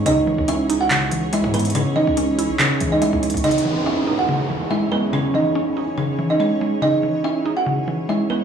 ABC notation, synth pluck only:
X:1
M:4/4
L:1/8
Q:1/4=142
K:C#m
V:1 name="Synth pluck" clef=bass
C, E, C D C, E, G, G, | C, E, C E C, E, G, G, | C, E, C D C, E, G, G, | C, E, C D C, E, G, G, |
C, E, C D C, E, G, G, |]